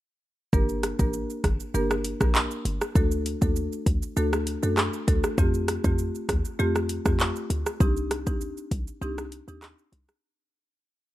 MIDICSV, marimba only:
0, 0, Header, 1, 2, 480
1, 0, Start_track
1, 0, Key_signature, -2, "minor"
1, 0, Tempo, 606061
1, 421, Time_signature, 4, 2, 24, 8
1, 8824, End_track
2, 0, Start_track
2, 0, Title_t, "Marimba"
2, 0, Program_c, 0, 12
2, 419, Note_on_c, 0, 58, 89
2, 421, Note_on_c, 0, 62, 87
2, 423, Note_on_c, 0, 67, 85
2, 424, Note_on_c, 0, 70, 103
2, 757, Note_off_c, 0, 58, 0
2, 758, Note_off_c, 0, 62, 0
2, 758, Note_off_c, 0, 67, 0
2, 759, Note_off_c, 0, 70, 0
2, 786, Note_on_c, 0, 58, 79
2, 786, Note_on_c, 0, 62, 72
2, 788, Note_on_c, 0, 67, 68
2, 790, Note_on_c, 0, 70, 88
2, 876, Note_off_c, 0, 58, 0
2, 877, Note_off_c, 0, 62, 0
2, 878, Note_off_c, 0, 67, 0
2, 878, Note_off_c, 0, 70, 0
2, 1379, Note_on_c, 0, 58, 90
2, 1381, Note_on_c, 0, 62, 82
2, 1383, Note_on_c, 0, 67, 81
2, 1384, Note_on_c, 0, 70, 98
2, 1481, Note_off_c, 0, 58, 0
2, 1482, Note_off_c, 0, 62, 0
2, 1483, Note_off_c, 0, 67, 0
2, 1484, Note_off_c, 0, 70, 0
2, 1746, Note_on_c, 0, 58, 80
2, 1747, Note_on_c, 0, 62, 69
2, 1748, Note_on_c, 0, 67, 70
2, 1749, Note_on_c, 0, 70, 85
2, 1836, Note_off_c, 0, 58, 0
2, 1837, Note_off_c, 0, 62, 0
2, 1838, Note_off_c, 0, 67, 0
2, 1838, Note_off_c, 0, 70, 0
2, 2339, Note_on_c, 0, 57, 95
2, 2340, Note_on_c, 0, 62, 85
2, 2342, Note_on_c, 0, 66, 87
2, 2344, Note_on_c, 0, 69, 107
2, 2677, Note_off_c, 0, 57, 0
2, 2677, Note_off_c, 0, 62, 0
2, 2678, Note_off_c, 0, 66, 0
2, 2679, Note_off_c, 0, 69, 0
2, 2706, Note_on_c, 0, 57, 79
2, 2706, Note_on_c, 0, 62, 75
2, 2709, Note_on_c, 0, 66, 72
2, 2710, Note_on_c, 0, 69, 88
2, 2797, Note_off_c, 0, 57, 0
2, 2797, Note_off_c, 0, 62, 0
2, 2798, Note_off_c, 0, 66, 0
2, 2799, Note_off_c, 0, 69, 0
2, 3299, Note_on_c, 0, 57, 91
2, 3300, Note_on_c, 0, 62, 82
2, 3301, Note_on_c, 0, 66, 84
2, 3303, Note_on_c, 0, 69, 97
2, 3401, Note_off_c, 0, 57, 0
2, 3401, Note_off_c, 0, 62, 0
2, 3402, Note_off_c, 0, 66, 0
2, 3403, Note_off_c, 0, 69, 0
2, 3666, Note_on_c, 0, 57, 78
2, 3667, Note_on_c, 0, 62, 70
2, 3669, Note_on_c, 0, 66, 71
2, 3670, Note_on_c, 0, 69, 85
2, 3756, Note_off_c, 0, 57, 0
2, 3757, Note_off_c, 0, 62, 0
2, 3758, Note_off_c, 0, 66, 0
2, 3759, Note_off_c, 0, 69, 0
2, 4019, Note_on_c, 0, 57, 82
2, 4020, Note_on_c, 0, 62, 77
2, 4022, Note_on_c, 0, 66, 77
2, 4024, Note_on_c, 0, 69, 93
2, 4121, Note_off_c, 0, 57, 0
2, 4121, Note_off_c, 0, 62, 0
2, 4122, Note_off_c, 0, 66, 0
2, 4123, Note_off_c, 0, 69, 0
2, 4260, Note_on_c, 0, 57, 94
2, 4262, Note_on_c, 0, 60, 87
2, 4263, Note_on_c, 0, 65, 86
2, 4266, Note_on_c, 0, 67, 106
2, 4597, Note_off_c, 0, 57, 0
2, 4598, Note_off_c, 0, 60, 0
2, 4599, Note_off_c, 0, 65, 0
2, 4600, Note_off_c, 0, 67, 0
2, 4628, Note_on_c, 0, 57, 81
2, 4629, Note_on_c, 0, 60, 72
2, 4631, Note_on_c, 0, 65, 70
2, 4634, Note_on_c, 0, 67, 87
2, 4718, Note_off_c, 0, 57, 0
2, 4718, Note_off_c, 0, 60, 0
2, 4719, Note_off_c, 0, 65, 0
2, 4720, Note_off_c, 0, 67, 0
2, 5221, Note_on_c, 0, 57, 92
2, 5223, Note_on_c, 0, 60, 85
2, 5224, Note_on_c, 0, 65, 85
2, 5225, Note_on_c, 0, 67, 100
2, 5322, Note_off_c, 0, 57, 0
2, 5323, Note_off_c, 0, 60, 0
2, 5324, Note_off_c, 0, 65, 0
2, 5324, Note_off_c, 0, 67, 0
2, 5589, Note_on_c, 0, 57, 81
2, 5590, Note_on_c, 0, 60, 73
2, 5591, Note_on_c, 0, 65, 72
2, 5593, Note_on_c, 0, 67, 91
2, 5678, Note_off_c, 0, 57, 0
2, 5679, Note_off_c, 0, 60, 0
2, 5679, Note_off_c, 0, 65, 0
2, 5680, Note_off_c, 0, 67, 0
2, 6180, Note_on_c, 0, 60, 95
2, 6181, Note_on_c, 0, 62, 85
2, 6183, Note_on_c, 0, 63, 87
2, 6183, Note_on_c, 0, 67, 103
2, 6517, Note_off_c, 0, 60, 0
2, 6518, Note_off_c, 0, 62, 0
2, 6519, Note_off_c, 0, 63, 0
2, 6519, Note_off_c, 0, 67, 0
2, 6546, Note_on_c, 0, 60, 77
2, 6547, Note_on_c, 0, 62, 75
2, 6549, Note_on_c, 0, 63, 68
2, 6550, Note_on_c, 0, 67, 86
2, 6636, Note_off_c, 0, 60, 0
2, 6637, Note_off_c, 0, 62, 0
2, 6638, Note_off_c, 0, 63, 0
2, 6638, Note_off_c, 0, 67, 0
2, 7140, Note_on_c, 0, 60, 92
2, 7141, Note_on_c, 0, 62, 86
2, 7142, Note_on_c, 0, 63, 84
2, 7144, Note_on_c, 0, 67, 99
2, 7241, Note_off_c, 0, 60, 0
2, 7242, Note_off_c, 0, 62, 0
2, 7242, Note_off_c, 0, 63, 0
2, 7243, Note_off_c, 0, 67, 0
2, 7509, Note_on_c, 0, 60, 78
2, 7510, Note_on_c, 0, 62, 70
2, 7511, Note_on_c, 0, 63, 70
2, 7514, Note_on_c, 0, 67, 88
2, 7598, Note_off_c, 0, 60, 0
2, 7599, Note_off_c, 0, 62, 0
2, 7599, Note_off_c, 0, 63, 0
2, 7600, Note_off_c, 0, 67, 0
2, 8824, End_track
0, 0, End_of_file